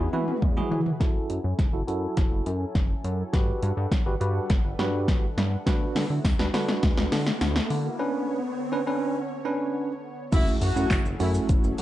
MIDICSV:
0, 0, Header, 1, 8, 480
1, 0, Start_track
1, 0, Key_signature, 3, "minor"
1, 0, Tempo, 582524
1, 829, Time_signature, 4, 2, 24, 8
1, 9739, End_track
2, 0, Start_track
2, 0, Title_t, "Tine electric piano"
2, 0, Program_c, 0, 4
2, 107, Note_on_c, 0, 64, 87
2, 109, Note_on_c, 0, 66, 80
2, 111, Note_on_c, 0, 71, 94
2, 297, Note_off_c, 0, 64, 0
2, 298, Note_off_c, 0, 66, 0
2, 300, Note_off_c, 0, 71, 0
2, 468, Note_on_c, 0, 64, 90
2, 469, Note_on_c, 0, 66, 81
2, 472, Note_on_c, 0, 68, 99
2, 658, Note_off_c, 0, 64, 0
2, 658, Note_off_c, 0, 66, 0
2, 660, Note_off_c, 0, 68, 0
2, 825, Note_on_c, 0, 64, 81
2, 828, Note_on_c, 0, 66, 71
2, 830, Note_on_c, 0, 69, 88
2, 1143, Note_off_c, 0, 64, 0
2, 1144, Note_off_c, 0, 66, 0
2, 1145, Note_off_c, 0, 69, 0
2, 1425, Note_on_c, 0, 64, 83
2, 1428, Note_on_c, 0, 66, 77
2, 1430, Note_on_c, 0, 69, 89
2, 1490, Note_off_c, 0, 64, 0
2, 1491, Note_off_c, 0, 66, 0
2, 1492, Note_off_c, 0, 69, 0
2, 1545, Note_on_c, 0, 64, 78
2, 1547, Note_on_c, 0, 66, 77
2, 1549, Note_on_c, 0, 69, 90
2, 2052, Note_off_c, 0, 64, 0
2, 2053, Note_off_c, 0, 66, 0
2, 2054, Note_off_c, 0, 69, 0
2, 2744, Note_on_c, 0, 66, 82
2, 2746, Note_on_c, 0, 67, 72
2, 2749, Note_on_c, 0, 71, 91
2, 3062, Note_off_c, 0, 66, 0
2, 3063, Note_off_c, 0, 67, 0
2, 3064, Note_off_c, 0, 71, 0
2, 3346, Note_on_c, 0, 66, 86
2, 3348, Note_on_c, 0, 67, 74
2, 3349, Note_on_c, 0, 71, 94
2, 3411, Note_off_c, 0, 66, 0
2, 3411, Note_off_c, 0, 67, 0
2, 3412, Note_off_c, 0, 71, 0
2, 3465, Note_on_c, 0, 66, 84
2, 3467, Note_on_c, 0, 67, 73
2, 3470, Note_on_c, 0, 71, 92
2, 3720, Note_off_c, 0, 66, 0
2, 3720, Note_off_c, 0, 67, 0
2, 3722, Note_off_c, 0, 71, 0
2, 3946, Note_on_c, 0, 66, 84
2, 3948, Note_on_c, 0, 67, 75
2, 3951, Note_on_c, 0, 71, 92
2, 4326, Note_off_c, 0, 66, 0
2, 4327, Note_off_c, 0, 67, 0
2, 4329, Note_off_c, 0, 71, 0
2, 4667, Note_on_c, 0, 62, 82
2, 4669, Note_on_c, 0, 66, 80
2, 4670, Note_on_c, 0, 71, 96
2, 4983, Note_off_c, 0, 62, 0
2, 4985, Note_off_c, 0, 66, 0
2, 4985, Note_off_c, 0, 71, 0
2, 5266, Note_on_c, 0, 62, 86
2, 5268, Note_on_c, 0, 66, 80
2, 5270, Note_on_c, 0, 71, 96
2, 5331, Note_off_c, 0, 62, 0
2, 5332, Note_off_c, 0, 66, 0
2, 5332, Note_off_c, 0, 71, 0
2, 5386, Note_on_c, 0, 62, 88
2, 5387, Note_on_c, 0, 66, 80
2, 5390, Note_on_c, 0, 71, 90
2, 5893, Note_off_c, 0, 62, 0
2, 5893, Note_off_c, 0, 66, 0
2, 5895, Note_off_c, 0, 71, 0
2, 6585, Note_on_c, 0, 61, 90
2, 6587, Note_on_c, 0, 62, 78
2, 6588, Note_on_c, 0, 71, 96
2, 6903, Note_off_c, 0, 61, 0
2, 6904, Note_off_c, 0, 62, 0
2, 6904, Note_off_c, 0, 71, 0
2, 7186, Note_on_c, 0, 61, 87
2, 7189, Note_on_c, 0, 62, 81
2, 7191, Note_on_c, 0, 71, 98
2, 7251, Note_off_c, 0, 61, 0
2, 7252, Note_off_c, 0, 62, 0
2, 7253, Note_off_c, 0, 71, 0
2, 7306, Note_on_c, 0, 61, 86
2, 7308, Note_on_c, 0, 62, 80
2, 7310, Note_on_c, 0, 71, 98
2, 7560, Note_off_c, 0, 61, 0
2, 7561, Note_off_c, 0, 62, 0
2, 7562, Note_off_c, 0, 71, 0
2, 7787, Note_on_c, 0, 61, 89
2, 7789, Note_on_c, 0, 62, 82
2, 7790, Note_on_c, 0, 71, 97
2, 8167, Note_off_c, 0, 61, 0
2, 8168, Note_off_c, 0, 62, 0
2, 8168, Note_off_c, 0, 71, 0
2, 8505, Note_on_c, 0, 57, 80
2, 8507, Note_on_c, 0, 61, 68
2, 8508, Note_on_c, 0, 64, 73
2, 8510, Note_on_c, 0, 66, 85
2, 8696, Note_off_c, 0, 57, 0
2, 8697, Note_off_c, 0, 61, 0
2, 8698, Note_off_c, 0, 64, 0
2, 8699, Note_off_c, 0, 66, 0
2, 8865, Note_on_c, 0, 57, 74
2, 8866, Note_on_c, 0, 61, 70
2, 8868, Note_on_c, 0, 64, 69
2, 8869, Note_on_c, 0, 66, 88
2, 9056, Note_off_c, 0, 57, 0
2, 9057, Note_off_c, 0, 61, 0
2, 9058, Note_off_c, 0, 64, 0
2, 9058, Note_off_c, 0, 66, 0
2, 9226, Note_on_c, 0, 57, 80
2, 9228, Note_on_c, 0, 61, 69
2, 9230, Note_on_c, 0, 64, 70
2, 9230, Note_on_c, 0, 66, 85
2, 9669, Note_off_c, 0, 57, 0
2, 9670, Note_off_c, 0, 61, 0
2, 9671, Note_off_c, 0, 66, 0
2, 9672, Note_off_c, 0, 64, 0
2, 9739, End_track
3, 0, Start_track
3, 0, Title_t, "Horn section"
3, 0, Program_c, 1, 61
3, 8507, Note_on_c, 1, 64, 113
3, 8665, Note_off_c, 1, 64, 0
3, 8748, Note_on_c, 1, 66, 82
3, 9087, Note_off_c, 1, 66, 0
3, 9229, Note_on_c, 1, 64, 81
3, 9308, Note_off_c, 1, 64, 0
3, 9709, Note_on_c, 1, 66, 90
3, 9739, Note_off_c, 1, 66, 0
3, 9739, End_track
4, 0, Start_track
4, 0, Title_t, "Analog synth pad"
4, 0, Program_c, 2, 89
4, 0, Note_on_c, 2, 52, 78
4, 0, Note_on_c, 2, 64, 74
4, 0, Note_on_c, 2, 66, 69
4, 0, Note_on_c, 2, 68, 72
4, 0, Note_on_c, 2, 71, 89
4, 820, Note_off_c, 2, 52, 0
4, 820, Note_off_c, 2, 64, 0
4, 820, Note_off_c, 2, 66, 0
4, 820, Note_off_c, 2, 68, 0
4, 820, Note_off_c, 2, 71, 0
4, 830, Note_on_c, 2, 54, 79
4, 831, Note_on_c, 2, 64, 74
4, 831, Note_on_c, 2, 69, 90
4, 831, Note_on_c, 2, 80, 71
4, 832, Note_on_c, 2, 61, 70
4, 2730, Note_off_c, 2, 54, 0
4, 2731, Note_off_c, 2, 61, 0
4, 2731, Note_off_c, 2, 64, 0
4, 2731, Note_off_c, 2, 80, 0
4, 2749, Note_on_c, 2, 71, 85
4, 2750, Note_on_c, 2, 62, 74
4, 2751, Note_on_c, 2, 55, 80
4, 2751, Note_on_c, 2, 78, 73
4, 4637, Note_off_c, 2, 69, 0
4, 4650, Note_off_c, 2, 55, 0
4, 4650, Note_off_c, 2, 62, 0
4, 4650, Note_off_c, 2, 71, 0
4, 4650, Note_off_c, 2, 78, 0
4, 4668, Note_on_c, 2, 50, 78
4, 4668, Note_on_c, 2, 57, 72
4, 4668, Note_on_c, 2, 59, 70
4, 4668, Note_on_c, 2, 64, 72
4, 4668, Note_on_c, 2, 66, 87
4, 6569, Note_off_c, 2, 57, 0
4, 6569, Note_off_c, 2, 64, 0
4, 6569, Note_off_c, 2, 66, 0
4, 6589, Note_on_c, 2, 73, 91
4, 8475, Note_off_c, 2, 50, 0
4, 8475, Note_off_c, 2, 59, 0
4, 8490, Note_off_c, 2, 73, 0
4, 8504, Note_on_c, 2, 64, 77
4, 8504, Note_on_c, 2, 68, 74
4, 8505, Note_on_c, 2, 61, 74
4, 8506, Note_on_c, 2, 54, 82
4, 8506, Note_on_c, 2, 69, 88
4, 9739, Note_off_c, 2, 54, 0
4, 9739, Note_off_c, 2, 61, 0
4, 9739, Note_off_c, 2, 64, 0
4, 9739, Note_off_c, 2, 68, 0
4, 9739, Note_off_c, 2, 69, 0
4, 9739, End_track
5, 0, Start_track
5, 0, Title_t, "Analog synth bass"
5, 0, Program_c, 3, 38
5, 109, Note_on_c, 3, 52, 96
5, 265, Note_off_c, 3, 52, 0
5, 348, Note_on_c, 3, 40, 96
5, 504, Note_off_c, 3, 40, 0
5, 588, Note_on_c, 3, 52, 102
5, 744, Note_off_c, 3, 52, 0
5, 829, Note_on_c, 3, 30, 116
5, 985, Note_off_c, 3, 30, 0
5, 1069, Note_on_c, 3, 42, 96
5, 1147, Note_off_c, 3, 42, 0
5, 1189, Note_on_c, 3, 42, 87
5, 1267, Note_off_c, 3, 42, 0
5, 1308, Note_on_c, 3, 30, 107
5, 1386, Note_off_c, 3, 30, 0
5, 1428, Note_on_c, 3, 30, 97
5, 1506, Note_off_c, 3, 30, 0
5, 1549, Note_on_c, 3, 42, 95
5, 1705, Note_off_c, 3, 42, 0
5, 1790, Note_on_c, 3, 30, 110
5, 1867, Note_off_c, 3, 30, 0
5, 1908, Note_on_c, 3, 30, 99
5, 1986, Note_off_c, 3, 30, 0
5, 2028, Note_on_c, 3, 42, 100
5, 2184, Note_off_c, 3, 42, 0
5, 2267, Note_on_c, 3, 30, 107
5, 2424, Note_off_c, 3, 30, 0
5, 2508, Note_on_c, 3, 42, 100
5, 2664, Note_off_c, 3, 42, 0
5, 2748, Note_on_c, 3, 31, 113
5, 2904, Note_off_c, 3, 31, 0
5, 2988, Note_on_c, 3, 43, 101
5, 3066, Note_off_c, 3, 43, 0
5, 3108, Note_on_c, 3, 43, 110
5, 3186, Note_off_c, 3, 43, 0
5, 3227, Note_on_c, 3, 31, 99
5, 3305, Note_off_c, 3, 31, 0
5, 3348, Note_on_c, 3, 31, 93
5, 3426, Note_off_c, 3, 31, 0
5, 3467, Note_on_c, 3, 43, 103
5, 3624, Note_off_c, 3, 43, 0
5, 3708, Note_on_c, 3, 31, 108
5, 3786, Note_off_c, 3, 31, 0
5, 3829, Note_on_c, 3, 31, 97
5, 3907, Note_off_c, 3, 31, 0
5, 3948, Note_on_c, 3, 43, 101
5, 4187, Note_on_c, 3, 31, 107
5, 4199, Note_off_c, 3, 43, 0
5, 4343, Note_off_c, 3, 31, 0
5, 4428, Note_on_c, 3, 43, 99
5, 4584, Note_off_c, 3, 43, 0
5, 4668, Note_on_c, 3, 38, 118
5, 4824, Note_off_c, 3, 38, 0
5, 4907, Note_on_c, 3, 50, 98
5, 4986, Note_off_c, 3, 50, 0
5, 5028, Note_on_c, 3, 50, 94
5, 5106, Note_off_c, 3, 50, 0
5, 5147, Note_on_c, 3, 38, 110
5, 5226, Note_off_c, 3, 38, 0
5, 5268, Note_on_c, 3, 38, 90
5, 5346, Note_off_c, 3, 38, 0
5, 5388, Note_on_c, 3, 50, 105
5, 5544, Note_off_c, 3, 50, 0
5, 5629, Note_on_c, 3, 38, 111
5, 5707, Note_off_c, 3, 38, 0
5, 5748, Note_on_c, 3, 38, 100
5, 5827, Note_off_c, 3, 38, 0
5, 5869, Note_on_c, 3, 50, 102
5, 6025, Note_off_c, 3, 50, 0
5, 6108, Note_on_c, 3, 38, 112
5, 6264, Note_off_c, 3, 38, 0
5, 6347, Note_on_c, 3, 50, 94
5, 6504, Note_off_c, 3, 50, 0
5, 8508, Note_on_c, 3, 30, 119
5, 8664, Note_off_c, 3, 30, 0
5, 8747, Note_on_c, 3, 42, 105
5, 8826, Note_off_c, 3, 42, 0
5, 8869, Note_on_c, 3, 42, 96
5, 8947, Note_off_c, 3, 42, 0
5, 8987, Note_on_c, 3, 30, 108
5, 9065, Note_off_c, 3, 30, 0
5, 9110, Note_on_c, 3, 30, 102
5, 9187, Note_off_c, 3, 30, 0
5, 9230, Note_on_c, 3, 42, 102
5, 9386, Note_off_c, 3, 42, 0
5, 9471, Note_on_c, 3, 30, 117
5, 9548, Note_off_c, 3, 30, 0
5, 9589, Note_on_c, 3, 30, 108
5, 9667, Note_off_c, 3, 30, 0
5, 9710, Note_on_c, 3, 42, 103
5, 9739, Note_off_c, 3, 42, 0
5, 9739, End_track
6, 0, Start_track
6, 0, Title_t, "Impact"
6, 0, Program_c, 4, 103
6, 8508, Note_on_c, 4, 60, 91
6, 9739, Note_off_c, 4, 60, 0
6, 9739, End_track
7, 0, Start_track
7, 0, Title_t, "Riser"
7, 0, Program_c, 5, 103
7, 829, Note_on_c, 5, 60, 82
7, 7549, Note_off_c, 5, 60, 0
7, 9739, End_track
8, 0, Start_track
8, 0, Title_t, "Drums"
8, 110, Note_on_c, 9, 47, 66
8, 192, Note_off_c, 9, 47, 0
8, 230, Note_on_c, 9, 47, 63
8, 312, Note_off_c, 9, 47, 0
8, 348, Note_on_c, 9, 36, 108
8, 349, Note_on_c, 9, 45, 76
8, 431, Note_off_c, 9, 36, 0
8, 432, Note_off_c, 9, 45, 0
8, 470, Note_on_c, 9, 45, 72
8, 552, Note_off_c, 9, 45, 0
8, 590, Note_on_c, 9, 43, 91
8, 672, Note_off_c, 9, 43, 0
8, 710, Note_on_c, 9, 43, 84
8, 792, Note_off_c, 9, 43, 0
8, 829, Note_on_c, 9, 36, 105
8, 829, Note_on_c, 9, 38, 48
8, 829, Note_on_c, 9, 42, 75
8, 911, Note_off_c, 9, 36, 0
8, 912, Note_off_c, 9, 38, 0
8, 912, Note_off_c, 9, 42, 0
8, 1069, Note_on_c, 9, 42, 47
8, 1151, Note_off_c, 9, 42, 0
8, 1308, Note_on_c, 9, 36, 109
8, 1309, Note_on_c, 9, 38, 59
8, 1309, Note_on_c, 9, 42, 71
8, 1390, Note_off_c, 9, 36, 0
8, 1391, Note_off_c, 9, 38, 0
8, 1392, Note_off_c, 9, 42, 0
8, 1550, Note_on_c, 9, 42, 50
8, 1632, Note_off_c, 9, 42, 0
8, 1788, Note_on_c, 9, 42, 76
8, 1789, Note_on_c, 9, 38, 62
8, 1790, Note_on_c, 9, 36, 115
8, 1870, Note_off_c, 9, 42, 0
8, 1872, Note_off_c, 9, 36, 0
8, 1872, Note_off_c, 9, 38, 0
8, 2029, Note_on_c, 9, 42, 50
8, 2111, Note_off_c, 9, 42, 0
8, 2267, Note_on_c, 9, 36, 113
8, 2267, Note_on_c, 9, 38, 61
8, 2268, Note_on_c, 9, 42, 69
8, 2349, Note_off_c, 9, 36, 0
8, 2350, Note_off_c, 9, 38, 0
8, 2350, Note_off_c, 9, 42, 0
8, 2509, Note_on_c, 9, 42, 44
8, 2591, Note_off_c, 9, 42, 0
8, 2748, Note_on_c, 9, 36, 112
8, 2748, Note_on_c, 9, 38, 69
8, 2748, Note_on_c, 9, 42, 74
8, 2831, Note_off_c, 9, 36, 0
8, 2831, Note_off_c, 9, 38, 0
8, 2831, Note_off_c, 9, 42, 0
8, 2987, Note_on_c, 9, 42, 48
8, 3070, Note_off_c, 9, 42, 0
8, 3227, Note_on_c, 9, 36, 109
8, 3229, Note_on_c, 9, 38, 82
8, 3229, Note_on_c, 9, 42, 72
8, 3309, Note_off_c, 9, 36, 0
8, 3311, Note_off_c, 9, 38, 0
8, 3312, Note_off_c, 9, 42, 0
8, 3469, Note_on_c, 9, 42, 49
8, 3551, Note_off_c, 9, 42, 0
8, 3706, Note_on_c, 9, 42, 80
8, 3708, Note_on_c, 9, 38, 81
8, 3709, Note_on_c, 9, 36, 117
8, 3789, Note_off_c, 9, 42, 0
8, 3790, Note_off_c, 9, 38, 0
8, 3791, Note_off_c, 9, 36, 0
8, 3948, Note_on_c, 9, 38, 87
8, 3948, Note_on_c, 9, 42, 47
8, 4030, Note_off_c, 9, 38, 0
8, 4030, Note_off_c, 9, 42, 0
8, 4187, Note_on_c, 9, 36, 111
8, 4189, Note_on_c, 9, 38, 85
8, 4189, Note_on_c, 9, 42, 70
8, 4270, Note_off_c, 9, 36, 0
8, 4271, Note_off_c, 9, 38, 0
8, 4271, Note_off_c, 9, 42, 0
8, 4431, Note_on_c, 9, 38, 86
8, 4431, Note_on_c, 9, 42, 47
8, 4513, Note_off_c, 9, 38, 0
8, 4513, Note_off_c, 9, 42, 0
8, 4669, Note_on_c, 9, 36, 109
8, 4669, Note_on_c, 9, 38, 92
8, 4669, Note_on_c, 9, 42, 81
8, 4751, Note_off_c, 9, 36, 0
8, 4752, Note_off_c, 9, 38, 0
8, 4752, Note_off_c, 9, 42, 0
8, 4909, Note_on_c, 9, 46, 72
8, 4910, Note_on_c, 9, 38, 94
8, 4991, Note_off_c, 9, 46, 0
8, 4992, Note_off_c, 9, 38, 0
8, 5147, Note_on_c, 9, 36, 114
8, 5147, Note_on_c, 9, 54, 81
8, 5149, Note_on_c, 9, 38, 104
8, 5150, Note_on_c, 9, 42, 76
8, 5229, Note_off_c, 9, 36, 0
8, 5229, Note_off_c, 9, 54, 0
8, 5231, Note_off_c, 9, 38, 0
8, 5232, Note_off_c, 9, 42, 0
8, 5269, Note_on_c, 9, 38, 98
8, 5351, Note_off_c, 9, 38, 0
8, 5389, Note_on_c, 9, 38, 105
8, 5390, Note_on_c, 9, 46, 68
8, 5471, Note_off_c, 9, 38, 0
8, 5472, Note_off_c, 9, 46, 0
8, 5509, Note_on_c, 9, 38, 106
8, 5591, Note_off_c, 9, 38, 0
8, 5626, Note_on_c, 9, 42, 81
8, 5628, Note_on_c, 9, 38, 102
8, 5629, Note_on_c, 9, 36, 122
8, 5709, Note_off_c, 9, 42, 0
8, 5710, Note_off_c, 9, 38, 0
8, 5712, Note_off_c, 9, 36, 0
8, 5747, Note_on_c, 9, 38, 111
8, 5829, Note_off_c, 9, 38, 0
8, 5867, Note_on_c, 9, 38, 111
8, 5867, Note_on_c, 9, 46, 70
8, 5950, Note_off_c, 9, 38, 0
8, 5950, Note_off_c, 9, 46, 0
8, 5987, Note_on_c, 9, 38, 102
8, 6069, Note_off_c, 9, 38, 0
8, 6106, Note_on_c, 9, 54, 77
8, 6107, Note_on_c, 9, 38, 109
8, 6107, Note_on_c, 9, 42, 70
8, 6189, Note_off_c, 9, 38, 0
8, 6189, Note_off_c, 9, 42, 0
8, 6189, Note_off_c, 9, 54, 0
8, 6227, Note_on_c, 9, 38, 110
8, 6309, Note_off_c, 9, 38, 0
8, 6347, Note_on_c, 9, 46, 68
8, 6430, Note_off_c, 9, 46, 0
8, 8508, Note_on_c, 9, 36, 117
8, 8508, Note_on_c, 9, 42, 87
8, 8508, Note_on_c, 9, 49, 102
8, 8508, Note_on_c, 9, 82, 85
8, 8590, Note_off_c, 9, 42, 0
8, 8590, Note_off_c, 9, 49, 0
8, 8590, Note_off_c, 9, 82, 0
8, 8591, Note_off_c, 9, 36, 0
8, 8629, Note_on_c, 9, 82, 48
8, 8712, Note_off_c, 9, 82, 0
8, 8747, Note_on_c, 9, 46, 74
8, 8747, Note_on_c, 9, 82, 53
8, 8829, Note_off_c, 9, 46, 0
8, 8829, Note_off_c, 9, 82, 0
8, 8869, Note_on_c, 9, 82, 83
8, 8952, Note_off_c, 9, 82, 0
8, 8985, Note_on_c, 9, 38, 87
8, 8987, Note_on_c, 9, 36, 122
8, 8989, Note_on_c, 9, 42, 80
8, 8989, Note_on_c, 9, 54, 89
8, 8989, Note_on_c, 9, 82, 80
8, 8991, Note_on_c, 9, 39, 117
8, 9067, Note_off_c, 9, 38, 0
8, 9070, Note_off_c, 9, 36, 0
8, 9071, Note_off_c, 9, 54, 0
8, 9072, Note_off_c, 9, 42, 0
8, 9072, Note_off_c, 9, 82, 0
8, 9073, Note_off_c, 9, 39, 0
8, 9109, Note_on_c, 9, 82, 52
8, 9191, Note_off_c, 9, 82, 0
8, 9229, Note_on_c, 9, 46, 71
8, 9229, Note_on_c, 9, 82, 53
8, 9312, Note_off_c, 9, 46, 0
8, 9312, Note_off_c, 9, 82, 0
8, 9347, Note_on_c, 9, 82, 89
8, 9430, Note_off_c, 9, 82, 0
8, 9468, Note_on_c, 9, 42, 81
8, 9468, Note_on_c, 9, 82, 82
8, 9470, Note_on_c, 9, 36, 127
8, 9551, Note_off_c, 9, 42, 0
8, 9551, Note_off_c, 9, 82, 0
8, 9553, Note_off_c, 9, 36, 0
8, 9590, Note_on_c, 9, 82, 67
8, 9673, Note_off_c, 9, 82, 0
8, 9709, Note_on_c, 9, 46, 71
8, 9709, Note_on_c, 9, 82, 51
8, 9739, Note_off_c, 9, 46, 0
8, 9739, Note_off_c, 9, 82, 0
8, 9739, End_track
0, 0, End_of_file